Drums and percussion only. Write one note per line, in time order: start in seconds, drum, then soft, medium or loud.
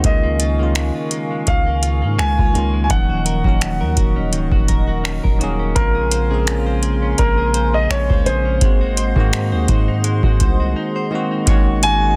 0.04 kick loud
0.04 closed hi-hat medium
0.40 closed hi-hat medium
0.75 finger snap loud
0.75 closed hi-hat medium
1.11 closed hi-hat medium
1.47 kick medium
1.47 closed hi-hat medium
1.83 closed hi-hat medium
2.19 finger snap loud
2.39 kick medium
2.55 closed hi-hat medium
2.90 kick loud
2.90 closed hi-hat medium
3.26 closed hi-hat medium
3.44 kick medium
3.61 finger snap loud
3.61 closed hi-hat medium
3.97 kick medium
3.97 closed hi-hat medium
4.33 closed hi-hat medium
4.52 kick medium
4.68 kick medium
4.68 closed hi-hat medium
5.05 finger snap loud
5.24 kick loud
5.41 closed hi-hat medium
5.76 kick loud
5.76 closed hi-hat medium
6.11 closed hi-hat medium
6.47 finger snap loud
6.47 closed hi-hat medium
6.83 closed hi-hat medium
7.18 kick medium
7.18 closed hi-hat medium
7.54 closed hi-hat medium
7.91 finger snap loud
8.10 kick loud
8.26 closed hi-hat medium
8.61 kick loud
8.61 closed hi-hat medium
8.97 closed hi-hat medium
9.16 kick medium
9.33 finger snap loud
9.33 closed hi-hat medium
9.68 kick loud
9.68 closed hi-hat medium
10.04 closed hi-hat medium
10.23 kick medium
10.40 kick medium
10.40 closed hi-hat medium
11.47 kick loud
11.47 closed hi-hat medium
11.83 closed hi-hat medium